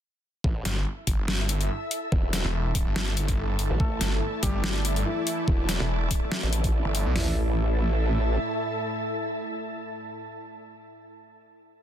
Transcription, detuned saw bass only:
0.65 G1
1.07 G1
2.45 E1
2.87 G1
4.01 G1
4.43 G1
5.80 E1
6.85 G1
7.06 B1

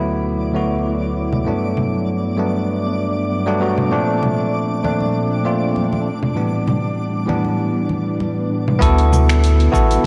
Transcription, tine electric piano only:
Already playing: D2 F#3 A3 B3 E4
0.52 D2 F#3 A3 B3 F#4
1.45 G2 F#3 A3 B3 D4
2.36 G2 F#3 A3 B3 D4
3.46 G2 F#3 A3 B3 D4
3.60 G2 F#3 A3 B3 F#4
3.89 A#2 F3 A3 C4 D4
4.83 A#2 F3 A3 C4 D4
5.44 A#2 F3 A3 C4 F4
6.34 A2 E3 G3 B3 D4
7.26 A2 E3 G3 B3 D4
8.79 B3 E4 F#4 A4
9.72 B3 E4 F#4 A4

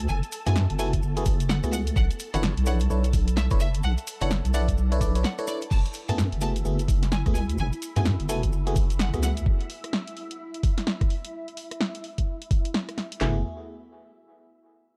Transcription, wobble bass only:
0.09 F#1
0.47 F#2
0.70 F#1
1.02 F#1
1.64 C#2
1.96 B1
2.34 F#1
2.57 B1
2.90 B1
3.51 F#1
3.84 B1
4.21 F#1
4.45 B1
4.77 B1
5.71 F#1
6.09 F#2
6.32 F#1
6.65 F#1
7.26 C#2
7.59 F#1
7.96 F#2
8.20 F#1
8.53 F#1
9.14 C#2
13.21 F#1

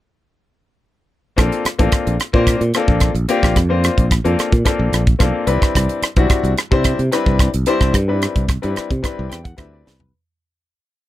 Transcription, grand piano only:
1.36 A#3 C4 D4 F4 A4
1.78 A#3 C4 D4 F4 A4
2.33 A#3 C4 D4 F4 C5
2.75 A#3 C4 D4 F4 A4
3.28 A#3 C4 D4 F4 G4
3.69 A#3 C4 D4 F4 C5
4.24 A#3 C4 D4 F4 A4
4.65 A#3 C4 D4 F4 A4
5.19 A#3 C4 D4 F4 A4
5.47 G3 C4 D4 E4 B4
6.17 G3 C4 D4 E4 F#4
6.71 G3 C4 D4 E4 C5
7.11 G3 C4 D4 E4 B4
7.67 G3 C4 D4 E4 C5
8.08 G3 C4 D4 E4 B4
8.62 G3 C4 D4 E4 B4
9.03 G3 C4 D4 E4 B4
9.29 G5
9.44 F#5
9.57 G3 C4 D4 E4 B4 E5
9.73 D5
9.85 B4

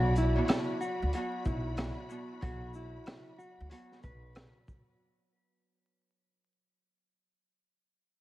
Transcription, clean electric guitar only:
Already playing: F#4
0.18 E4
0.81 F#4
1.15 F#4
1.45 E4
2.43 F#4
2.75 E4
3.38 F#4
3.72 F#4
4.03 B4

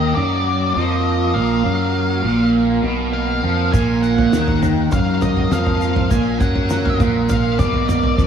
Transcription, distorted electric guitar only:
Already playing: D#3
0.17 F#3
0.76 F3
1.36 A#2
1.65 F#3
2.25 A#2
2.84 B2
3.44 F3
3.74 A#2
4.33 D#3
4.92 F#3
5.51 F3
6.11 A#2
6.39 F#3
6.99 A#2
7.59 B2
8.18 F3

